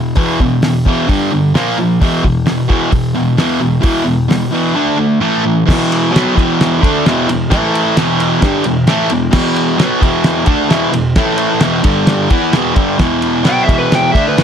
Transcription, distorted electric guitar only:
0.00 0.15 E2 medium
0.00 0.15 B2 medium
0.16 0.38 E2 medium
0.16 0.38 B2 medium
0.16 0.38 E3 medium
0.40 0.61 E2 medium
0.40 0.61 B2 medium
0.62 0.83 E2 medium
0.62 0.84 B2 medium
0.85 1.07 E2 loud
0.85 1.08 B2 loud
0.85 1.08 E3 loud
1.07 1.30 G2 loud
1.07 1.30 D3 loud
1.07 1.31 G3 loud
1.32 1.53 G2 medium
1.32 1.53 D3 medium
1.54 1.76 A#2 medium
1.54 1.77 F3 medium
1.54 1.77 A#3 loud
1.78 1.99 A#2 medium
1.78 1.99 F3 medium
2.00 2.22 E2 medium
2.00 2.23 B2 medium
2.00 2.23 E3 medium
2.23 2.44 E2 medium
2.23 2.45 B2 medium
2.46 2.67 E2 medium
2.46 2.67 B2 medium
2.68 2.90 E2 loud
2.68 2.91 B2 medium
2.68 2.91 E3 loud
2.91 3.13 E2 medium
2.91 3.13 B2 medium
3.15 3.36 E2 medium
3.15 3.36 B2 medium
3.37 3.59 E2 medium
3.37 3.60 B2 medium
3.37 3.60 E3 loud
3.60 3.80 E2 medium
3.60 3.81 B2 medium
3.81 4.03 E2 medium
3.81 4.03 B2 medium
3.81 4.06 E3 loud
4.04 4.26 E2 medium
4.04 4.27 B2 medium
4.28 4.50 E2 medium
4.28 4.50 B2 medium
4.51 4.74 E2 medium
4.51 4.74 B2 loud
4.51 4.75 E3 loud
4.75 4.96 D3 medium
4.75 4.96 A3 medium
4.75 4.98 D4 loud
4.97 5.19 D3 medium
4.97 5.19 A3 medium
5.20 5.43 A2 medium
5.20 5.43 E3 medium
5.20 5.44 A3 loud
5.45 5.65 A2 medium
5.45 5.66 E3 medium
5.66 6.12 E2 medium
5.66 6.10 B2 loud
5.66 6.11 E3 loud
6.11 6.34 B2 medium
6.11 6.35 F#3 medium
6.11 6.36 B3 loud
6.34 6.80 E2 loud
6.34 6.81 B2 loud
6.34 6.81 E3 loud
6.81 7.04 D3 medium
6.81 7.04 A3 loud
6.81 7.05 D4 medium
7.06 7.27 E2 medium
7.06 7.28 B2 medium
7.06 7.29 E3 loud
7.28 7.46 E2 medium
7.28 7.50 B2 medium
7.50 7.95 A2 medium
7.50 7.95 E3 loud
7.50 7.96 A3 medium
7.97 8.40 E2 medium
7.97 8.42 B2 loud
7.97 8.43 E3 medium
8.41 8.64 G2 loud
8.41 8.64 D3 loud
8.41 8.65 G3 loud
8.66 8.84 E2 medium
8.66 8.84 B2 medium
8.87 9.09 A2 medium
8.87 9.10 E3 loud
8.87 9.11 A3 loud
9.10 9.29 E2 medium
9.10 9.29 B2 medium
9.31 9.77 E2 medium
9.31 9.76 B2 loud
9.31 9.78 E3 medium
9.77 10.00 B2 medium
9.77 10.01 F#3 medium
9.77 10.02 B3 loud
10.01 10.47 E2 loud
10.01 10.45 B2 loud
10.01 10.46 E3 loud
10.45 10.69 D3 medium
10.45 10.70 A3 medium
10.45 10.70 D4 loud
10.69 10.91 E2 medium
10.69 10.91 B2 medium
10.69 10.93 E3 medium
10.92 11.11 E2 medium
10.92 11.11 B2 medium
11.16 11.61 A2 loud
11.16 11.62 E3 medium
11.16 11.62 A3 loud
11.62 11.83 E2 medium
11.62 11.85 B2 loud
11.62 11.84 E3 medium
11.84 12.29 G2 loud
11.84 12.29 D3 loud
11.84 12.30 G3 loud
12.29 12.52 E3 loud
12.29 12.53 B3 medium
12.29 12.54 E4 medium
12.52 12.74 E2 medium
12.52 12.75 B2 medium
12.52 12.76 E3 loud
12.74 12.97 G2 medium
12.74 12.99 D3 loud
12.74 12.99 G3 medium
12.98 13.44 E2 medium
12.98 13.42 B2 loud
12.98 13.44 E3 loud
13.44 13.66 B2 medium
13.44 13.67 F#3 medium
13.44 13.68 B3 loud
13.67 14.13 E2 medium
13.67 14.13 B2 medium
13.67 14.14 E3 loud
14.14 14.36 D3 medium
14.14 14.37 A3 loud
14.14 14.38 D4 loud
14.37 14.44 E2 medium
14.37 14.44 B2 loud
14.37 14.44 E3 loud

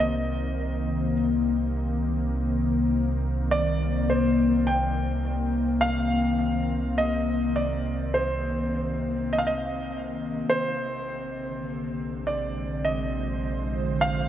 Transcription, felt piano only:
0.00 1.14 D#5 medium
3.51 4.11 D5 loud
4.10 4.69 C5 medium
4.67 5.86 G5 medium
5.81 7.01 F5 loud
6.98 7.58 D#5 loud
7.56 8.16 D5 medium
8.14 9.35 C5 medium
9.33 9.40 D#5 medium
9.38 9.46 F5 medium
9.47 10.54 D#5 medium
10.50 12.32 C5 medium
12.27 12.87 D5 medium
12.85 14.05 D#5 medium
14.01 14.29 F5 medium

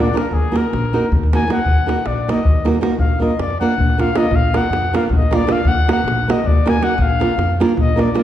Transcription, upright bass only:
0.00 0.12 A#1 loud
0.31 0.56 D#2 medium
0.73 0.97 A#1 medium
1.12 1.44 D#2 medium
1.65 1.90 D#2 loud
2.06 2.30 A#1 medium
2.46 2.79 D#2 medium
2.98 3.23 A#1 medium
3.39 3.63 F2 medium
3.77 4.10 A#1 medium
4.31 4.56 A#1 loud
4.70 4.95 F2 medium
5.09 5.43 A#1 medium
5.64 5.89 D#2 medium
6.04 6.29 A#1 loud
6.44 6.77 D#2 medium
6.98 7.22 A#1 loud
7.37 7.62 F2 loud
7.77 8.10 A#1 loud

